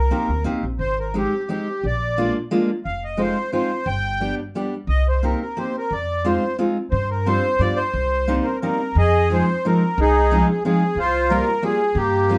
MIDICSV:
0, 0, Header, 1, 4, 480
1, 0, Start_track
1, 0, Key_signature, -3, "minor"
1, 0, Tempo, 345622
1, 1124, Time_signature, 3, 2, 24, 8
1, 3038, Tempo, 338983
1, 12635, Key_signature, -4, "minor"
1, 13598, Tempo, 331492
1, 17560, End_track
2, 0, Start_track
2, 0, Title_t, "Accordion"
2, 0, Program_c, 0, 21
2, 0, Note_on_c, 0, 70, 83
2, 605, Note_off_c, 0, 70, 0
2, 1105, Note_on_c, 0, 72, 91
2, 1372, Note_off_c, 0, 72, 0
2, 1381, Note_on_c, 0, 70, 67
2, 1593, Note_off_c, 0, 70, 0
2, 1621, Note_on_c, 0, 67, 77
2, 2067, Note_off_c, 0, 67, 0
2, 2088, Note_on_c, 0, 67, 72
2, 2579, Note_off_c, 0, 67, 0
2, 2586, Note_on_c, 0, 74, 89
2, 3249, Note_off_c, 0, 74, 0
2, 3978, Note_on_c, 0, 77, 86
2, 4240, Note_off_c, 0, 77, 0
2, 4250, Note_on_c, 0, 75, 66
2, 4459, Note_on_c, 0, 72, 87
2, 4483, Note_off_c, 0, 75, 0
2, 4915, Note_off_c, 0, 72, 0
2, 4936, Note_on_c, 0, 72, 78
2, 5420, Note_on_c, 0, 79, 114
2, 5432, Note_off_c, 0, 72, 0
2, 6102, Note_off_c, 0, 79, 0
2, 6857, Note_on_c, 0, 75, 105
2, 7126, Note_off_c, 0, 75, 0
2, 7139, Note_on_c, 0, 72, 70
2, 7360, Note_on_c, 0, 70, 74
2, 7375, Note_off_c, 0, 72, 0
2, 7583, Note_off_c, 0, 70, 0
2, 7604, Note_on_c, 0, 70, 67
2, 7839, Note_on_c, 0, 72, 69
2, 7847, Note_off_c, 0, 70, 0
2, 8097, Note_off_c, 0, 72, 0
2, 8120, Note_on_c, 0, 70, 81
2, 8326, Note_on_c, 0, 74, 93
2, 8346, Note_off_c, 0, 70, 0
2, 8790, Note_on_c, 0, 72, 75
2, 8821, Note_off_c, 0, 74, 0
2, 9240, Note_off_c, 0, 72, 0
2, 9726, Note_on_c, 0, 72, 83
2, 9992, Note_off_c, 0, 72, 0
2, 10006, Note_on_c, 0, 70, 74
2, 10226, Note_on_c, 0, 72, 103
2, 10239, Note_off_c, 0, 70, 0
2, 10710, Note_on_c, 0, 74, 110
2, 10720, Note_off_c, 0, 72, 0
2, 10931, Note_on_c, 0, 72, 91
2, 10963, Note_off_c, 0, 74, 0
2, 11886, Note_on_c, 0, 70, 65
2, 12080, Note_off_c, 0, 72, 0
2, 12108, Note_off_c, 0, 70, 0
2, 12129, Note_on_c, 0, 70, 83
2, 12641, Note_off_c, 0, 70, 0
2, 12646, Note_on_c, 0, 68, 61
2, 12652, Note_on_c, 0, 75, 104
2, 13094, Note_off_c, 0, 75, 0
2, 13149, Note_on_c, 0, 72, 90
2, 13321, Note_off_c, 0, 68, 0
2, 13627, Note_on_c, 0, 70, 84
2, 13629, Note_off_c, 0, 72, 0
2, 14116, Note_off_c, 0, 70, 0
2, 14118, Note_on_c, 0, 63, 74
2, 14119, Note_on_c, 0, 68, 107
2, 14784, Note_off_c, 0, 63, 0
2, 14808, Note_off_c, 0, 68, 0
2, 14830, Note_on_c, 0, 68, 72
2, 15027, Note_off_c, 0, 68, 0
2, 15049, Note_on_c, 0, 68, 94
2, 15536, Note_on_c, 0, 65, 75
2, 15543, Note_off_c, 0, 68, 0
2, 15553, Note_on_c, 0, 72, 103
2, 15986, Note_on_c, 0, 70, 100
2, 16030, Note_off_c, 0, 72, 0
2, 16202, Note_off_c, 0, 65, 0
2, 16485, Note_off_c, 0, 70, 0
2, 16487, Note_on_c, 0, 68, 97
2, 16957, Note_on_c, 0, 58, 88
2, 16957, Note_on_c, 0, 67, 99
2, 16976, Note_off_c, 0, 68, 0
2, 17560, Note_off_c, 0, 58, 0
2, 17560, Note_off_c, 0, 67, 0
2, 17560, End_track
3, 0, Start_track
3, 0, Title_t, "Steel-string acoustic guitar"
3, 0, Program_c, 1, 25
3, 148, Note_on_c, 1, 58, 55
3, 154, Note_on_c, 1, 60, 56
3, 157, Note_on_c, 1, 63, 55
3, 166, Note_on_c, 1, 67, 58
3, 403, Note_off_c, 1, 60, 0
3, 404, Note_off_c, 1, 58, 0
3, 407, Note_off_c, 1, 63, 0
3, 411, Note_off_c, 1, 67, 0
3, 615, Note_on_c, 1, 58, 70
3, 621, Note_on_c, 1, 60, 61
3, 626, Note_on_c, 1, 63, 66
3, 637, Note_on_c, 1, 67, 71
3, 877, Note_off_c, 1, 58, 0
3, 881, Note_off_c, 1, 63, 0
3, 882, Note_off_c, 1, 60, 0
3, 884, Note_off_c, 1, 67, 0
3, 1584, Note_on_c, 1, 56, 63
3, 1598, Note_on_c, 1, 60, 54
3, 1603, Note_on_c, 1, 63, 51
3, 1608, Note_on_c, 1, 67, 60
3, 1841, Note_off_c, 1, 56, 0
3, 1849, Note_off_c, 1, 60, 0
3, 1849, Note_off_c, 1, 63, 0
3, 1853, Note_off_c, 1, 67, 0
3, 2065, Note_on_c, 1, 56, 55
3, 2074, Note_on_c, 1, 60, 51
3, 2082, Note_on_c, 1, 67, 65
3, 2084, Note_on_c, 1, 63, 47
3, 2322, Note_off_c, 1, 56, 0
3, 2327, Note_off_c, 1, 60, 0
3, 2328, Note_off_c, 1, 63, 0
3, 2330, Note_off_c, 1, 67, 0
3, 3023, Note_on_c, 1, 56, 60
3, 3024, Note_on_c, 1, 58, 55
3, 3028, Note_on_c, 1, 65, 73
3, 3034, Note_on_c, 1, 62, 56
3, 3280, Note_off_c, 1, 58, 0
3, 3281, Note_off_c, 1, 56, 0
3, 3281, Note_off_c, 1, 65, 0
3, 3283, Note_off_c, 1, 62, 0
3, 3496, Note_on_c, 1, 56, 74
3, 3503, Note_on_c, 1, 58, 66
3, 3507, Note_on_c, 1, 62, 56
3, 3514, Note_on_c, 1, 65, 80
3, 3753, Note_off_c, 1, 56, 0
3, 3758, Note_off_c, 1, 58, 0
3, 3758, Note_off_c, 1, 62, 0
3, 3759, Note_off_c, 1, 65, 0
3, 4434, Note_on_c, 1, 56, 61
3, 4442, Note_on_c, 1, 60, 53
3, 4449, Note_on_c, 1, 63, 58
3, 4455, Note_on_c, 1, 65, 72
3, 4699, Note_off_c, 1, 56, 0
3, 4703, Note_off_c, 1, 60, 0
3, 4707, Note_off_c, 1, 63, 0
3, 4708, Note_off_c, 1, 65, 0
3, 4932, Note_on_c, 1, 56, 62
3, 4942, Note_on_c, 1, 63, 53
3, 4943, Note_on_c, 1, 65, 61
3, 4945, Note_on_c, 1, 60, 47
3, 5186, Note_off_c, 1, 56, 0
3, 5188, Note_off_c, 1, 60, 0
3, 5189, Note_off_c, 1, 65, 0
3, 5190, Note_off_c, 1, 63, 0
3, 5893, Note_on_c, 1, 55, 54
3, 5903, Note_on_c, 1, 59, 47
3, 5907, Note_on_c, 1, 62, 52
3, 5916, Note_on_c, 1, 67, 68
3, 6151, Note_off_c, 1, 55, 0
3, 6152, Note_off_c, 1, 59, 0
3, 6156, Note_off_c, 1, 62, 0
3, 6161, Note_off_c, 1, 67, 0
3, 6386, Note_on_c, 1, 59, 54
3, 6393, Note_on_c, 1, 55, 65
3, 6397, Note_on_c, 1, 62, 55
3, 6406, Note_on_c, 1, 67, 65
3, 6640, Note_off_c, 1, 59, 0
3, 6644, Note_off_c, 1, 55, 0
3, 6644, Note_off_c, 1, 62, 0
3, 6647, Note_off_c, 1, 67, 0
3, 7343, Note_on_c, 1, 58, 51
3, 7348, Note_on_c, 1, 60, 47
3, 7358, Note_on_c, 1, 63, 49
3, 7362, Note_on_c, 1, 67, 67
3, 7602, Note_off_c, 1, 58, 0
3, 7606, Note_off_c, 1, 60, 0
3, 7607, Note_off_c, 1, 63, 0
3, 7611, Note_off_c, 1, 67, 0
3, 7823, Note_on_c, 1, 58, 56
3, 7826, Note_on_c, 1, 60, 53
3, 7835, Note_on_c, 1, 63, 44
3, 7841, Note_on_c, 1, 67, 62
3, 8082, Note_off_c, 1, 58, 0
3, 8083, Note_off_c, 1, 60, 0
3, 8088, Note_off_c, 1, 63, 0
3, 8091, Note_off_c, 1, 67, 0
3, 8783, Note_on_c, 1, 56, 64
3, 8788, Note_on_c, 1, 60, 56
3, 8795, Note_on_c, 1, 63, 49
3, 8797, Note_on_c, 1, 65, 70
3, 9041, Note_off_c, 1, 56, 0
3, 9043, Note_off_c, 1, 60, 0
3, 9047, Note_off_c, 1, 63, 0
3, 9048, Note_off_c, 1, 65, 0
3, 9265, Note_on_c, 1, 56, 68
3, 9270, Note_on_c, 1, 60, 54
3, 9270, Note_on_c, 1, 65, 59
3, 9277, Note_on_c, 1, 63, 59
3, 9518, Note_off_c, 1, 60, 0
3, 9519, Note_off_c, 1, 56, 0
3, 9521, Note_off_c, 1, 63, 0
3, 9521, Note_off_c, 1, 65, 0
3, 10225, Note_on_c, 1, 55, 67
3, 10231, Note_on_c, 1, 60, 66
3, 10237, Note_on_c, 1, 62, 58
3, 10241, Note_on_c, 1, 65, 67
3, 10473, Note_off_c, 1, 55, 0
3, 10477, Note_off_c, 1, 60, 0
3, 10478, Note_off_c, 1, 62, 0
3, 10481, Note_off_c, 1, 65, 0
3, 10705, Note_on_c, 1, 59, 48
3, 10712, Note_on_c, 1, 55, 55
3, 10718, Note_on_c, 1, 62, 50
3, 10727, Note_on_c, 1, 65, 64
3, 10953, Note_off_c, 1, 59, 0
3, 10957, Note_off_c, 1, 55, 0
3, 10960, Note_off_c, 1, 62, 0
3, 10963, Note_off_c, 1, 65, 0
3, 11658, Note_on_c, 1, 58, 58
3, 11665, Note_on_c, 1, 60, 70
3, 11673, Note_on_c, 1, 63, 72
3, 11678, Note_on_c, 1, 55, 63
3, 11912, Note_off_c, 1, 55, 0
3, 11913, Note_off_c, 1, 58, 0
3, 11913, Note_off_c, 1, 60, 0
3, 11914, Note_off_c, 1, 63, 0
3, 12151, Note_on_c, 1, 58, 52
3, 12158, Note_on_c, 1, 60, 54
3, 12159, Note_on_c, 1, 55, 58
3, 12161, Note_on_c, 1, 63, 63
3, 12402, Note_off_c, 1, 55, 0
3, 12403, Note_off_c, 1, 58, 0
3, 12405, Note_off_c, 1, 60, 0
3, 12407, Note_off_c, 1, 63, 0
3, 13109, Note_on_c, 1, 53, 58
3, 13124, Note_on_c, 1, 56, 53
3, 13130, Note_on_c, 1, 60, 55
3, 13138, Note_on_c, 1, 63, 57
3, 13362, Note_off_c, 1, 53, 0
3, 13369, Note_off_c, 1, 56, 0
3, 13373, Note_off_c, 1, 60, 0
3, 13374, Note_off_c, 1, 63, 0
3, 13604, Note_on_c, 1, 53, 64
3, 13609, Note_on_c, 1, 56, 51
3, 13618, Note_on_c, 1, 60, 56
3, 13619, Note_on_c, 1, 63, 60
3, 13857, Note_off_c, 1, 53, 0
3, 13857, Note_off_c, 1, 56, 0
3, 13858, Note_off_c, 1, 60, 0
3, 13862, Note_off_c, 1, 63, 0
3, 14561, Note_on_c, 1, 53, 61
3, 14570, Note_on_c, 1, 56, 60
3, 14576, Note_on_c, 1, 60, 58
3, 14584, Note_on_c, 1, 63, 80
3, 14814, Note_off_c, 1, 53, 0
3, 14817, Note_off_c, 1, 56, 0
3, 14823, Note_off_c, 1, 60, 0
3, 14823, Note_off_c, 1, 63, 0
3, 15051, Note_on_c, 1, 53, 65
3, 15051, Note_on_c, 1, 56, 51
3, 15057, Note_on_c, 1, 60, 55
3, 15064, Note_on_c, 1, 63, 71
3, 15299, Note_off_c, 1, 56, 0
3, 15300, Note_off_c, 1, 53, 0
3, 15303, Note_off_c, 1, 60, 0
3, 15305, Note_off_c, 1, 63, 0
3, 15999, Note_on_c, 1, 55, 73
3, 16001, Note_on_c, 1, 58, 59
3, 16008, Note_on_c, 1, 60, 61
3, 16017, Note_on_c, 1, 65, 69
3, 16248, Note_off_c, 1, 55, 0
3, 16248, Note_off_c, 1, 58, 0
3, 16250, Note_off_c, 1, 60, 0
3, 16256, Note_off_c, 1, 65, 0
3, 16462, Note_on_c, 1, 58, 53
3, 16469, Note_on_c, 1, 55, 67
3, 16470, Note_on_c, 1, 60, 57
3, 16475, Note_on_c, 1, 65, 75
3, 16717, Note_off_c, 1, 58, 0
3, 16719, Note_off_c, 1, 60, 0
3, 16721, Note_off_c, 1, 55, 0
3, 16723, Note_off_c, 1, 65, 0
3, 17434, Note_on_c, 1, 55, 66
3, 17440, Note_on_c, 1, 58, 51
3, 17449, Note_on_c, 1, 60, 57
3, 17453, Note_on_c, 1, 65, 76
3, 17560, Note_off_c, 1, 55, 0
3, 17560, Note_off_c, 1, 58, 0
3, 17560, Note_off_c, 1, 60, 0
3, 17560, Note_off_c, 1, 65, 0
3, 17560, End_track
4, 0, Start_track
4, 0, Title_t, "Upright bass"
4, 0, Program_c, 2, 32
4, 395, Note_on_c, 2, 38, 59
4, 611, Note_off_c, 2, 38, 0
4, 636, Note_on_c, 2, 36, 62
4, 862, Note_off_c, 2, 36, 0
4, 877, Note_on_c, 2, 34, 62
4, 1093, Note_off_c, 2, 34, 0
4, 1099, Note_on_c, 2, 32, 72
4, 1730, Note_off_c, 2, 32, 0
4, 2550, Note_on_c, 2, 34, 82
4, 3172, Note_off_c, 2, 34, 0
4, 3982, Note_on_c, 2, 29, 74
4, 4605, Note_off_c, 2, 29, 0
4, 5405, Note_on_c, 2, 31, 101
4, 6040, Note_off_c, 2, 31, 0
4, 6840, Note_on_c, 2, 36, 80
4, 7480, Note_off_c, 2, 36, 0
4, 8305, Note_on_c, 2, 41, 80
4, 8933, Note_off_c, 2, 41, 0
4, 9738, Note_on_c, 2, 43, 96
4, 10362, Note_off_c, 2, 43, 0
4, 10688, Note_on_c, 2, 43, 83
4, 11005, Note_off_c, 2, 43, 0
4, 11177, Note_on_c, 2, 36, 96
4, 11805, Note_off_c, 2, 36, 0
4, 12618, Note_on_c, 2, 41, 96
4, 13250, Note_off_c, 2, 41, 0
4, 14080, Note_on_c, 2, 36, 102
4, 14709, Note_off_c, 2, 36, 0
4, 15493, Note_on_c, 2, 36, 82
4, 16122, Note_off_c, 2, 36, 0
4, 16935, Note_on_c, 2, 43, 97
4, 17560, Note_off_c, 2, 43, 0
4, 17560, End_track
0, 0, End_of_file